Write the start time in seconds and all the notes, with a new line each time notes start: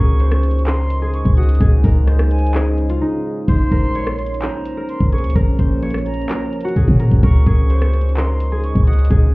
Already playing: C#2 C#3 G#3 D#4 F#4 G#4 A#4 C#5 C#6
0.20 C5, closed hi-hat
0.32 cross-stick
0.43 closed hi-hat
0.51 closed hi-hat
0.59 closed hi-hat
0.67 A#4 C6, clap, closed hi-hat
0.90 closed hi-hat
1.02 G#4
1.14 C#6, closed hi-hat
1.25 C#2, kick
1.37 F#4 D#6, closed hi-hat
1.43 closed hi-hat
1.49 closed hi-hat
1.55 closed hi-hat
1.60 C#2 G#4, kick, closed hi-hat
1.84 C#2 A#4, kick, open hi-hat
2.07 C5, cross-stick, closed hi-hat
2.19 cross-stick
2.31 G#5, closed hi-hat
2.39 closed hi-hat
2.47 closed hi-hat
2.54 G#4, clap, closed hi-hat
2.78 closed hi-hat
2.90 F4, closed hi-hat
3.01 D#4
3.48 A#1 F3 A#3 C#4 C5 C6, kick, closed hi-hat
3.72 A#1 A#4, kick, closed hi-hat
3.95 C#5, closed hi-hat
4.07 cross-stick
4.19 closed hi-hat
4.26 closed hi-hat
4.34 closed hi-hat
4.42 C5 A#5, clap, closed hi-hat
4.65 closed hi-hat
4.77 A#4
4.89 C6, closed hi-hat
5.00 A#1, kick
5.12 G#4 C#6, closed hi-hat
5.18 closed hi-hat
5.24 C#2, closed hi-hat
5.30 closed hi-hat
5.35 A#1 A#4, kick, closed hi-hat
5.59 A#1 C5, kick, closed hi-hat
5.82 C#5, closed hi-hat
5.90 cross-stick, closed hi-hat
5.98 closed hi-hat
6.06 A#5, closed hi-hat
6.14 closed hi-hat
6.22 closed hi-hat
6.29 A#4, clap, closed hi-hat
6.53 closed hi-hat
6.61 F#4, closed hi-hat
6.68 closed hi-hat
6.76 A#1 G#4, closed hi-hat
6.88 A#2, kick
7.00 A#4, closed hi-hat
7.11 A#1, kick
7.23 C#2 C#3 G#3 D#4 A#4 C#6, kick, closed hi-hat
7.46 C#2 G#4, kick, closed hi-hat
7.70 C5, closed hi-hat
7.82 cross-stick
7.93 closed hi-hat
8.01 closed hi-hat
8.09 closed hi-hat
8.17 A#4 C6, clap, closed hi-hat
8.40 closed hi-hat
8.52 G#4
8.64 C#6, closed hi-hat
8.75 C#2, kick
8.87 F#4 D#6, closed hi-hat
8.93 closed hi-hat
8.99 closed hi-hat
9.05 closed hi-hat
9.10 C#2 G#4, kick, closed hi-hat